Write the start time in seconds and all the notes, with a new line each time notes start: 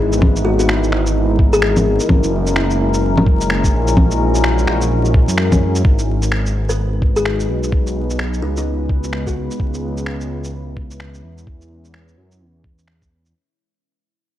Already playing: G#3 B3 D#4 E4 B4
0.00 G#1
0.13 shaker
0.22 A#4, kick, low bongo
0.36 shaker
0.45 F#4
0.59 F#4, shaker
0.69 finger snap
0.84 shaker
0.92 G#1, finger snap
1.07 shaker
1.39 kick
1.53 G#4, shaker
1.62 finger snap
1.77 low bongo, shaker
2.00 shaker
2.09 F#1 G#3 C#4 F#4, kick, low bongo
2.24 shaker
2.47 shaker
2.56 finger snap
2.70 shaker
2.94 shaker
3.17 low bongo
3.26 kick
3.41 shaker
3.50 finger snap
3.64 kick, shaker
3.73 A#1
3.88 shaker
3.97 kick, low bongo
4.11 shaker
4.35 shaker
4.44 finger snap
4.58 shaker
4.67 A#1, finger snap
4.82 shaker
5.05 shaker
5.14 kick
5.28 F#2, shaker
5.38 finger snap
5.52 kick, low bongo, shaker
5.76 shaker
5.84 G#1 G#3 B3 D#4 F#4 B4, kick
5.99 shaker
6.22 shaker
6.32 finger snap
6.46 shaker
6.69 B4, shaker
7.02 kick
7.16 G#4, shaker
7.25 finger snap
7.40 shaker
7.49 B1
7.63 shaker
7.72 kick
7.87 shaker
8.10 shaker
8.19 finger snap
8.34 shaker
8.42 C#2 D#4
8.57 D#4, shaker
8.89 kick
9.04 shaker
9.13 finger snap
9.27 F#4, kick, shaker
9.51 shaker
9.60 C#2 C#4 E4, kick
9.74 shaker
9.97 shaker
10.06 finger snap
10.21 shaker
10.44 shaker
10.77 kick
10.91 shaker
11.00 finger snap
11.14 shaker
11.24 E2
11.38 shaker
11.47 C#5, kick
11.61 shaker
11.85 shaker
11.94 finger snap
12.08 shaker
12.18 F#2
12.32 shaker
12.41 E2
12.64 kick
12.79 shaker
12.88 finger snap
13.02 kick, shaker
13.26 shaker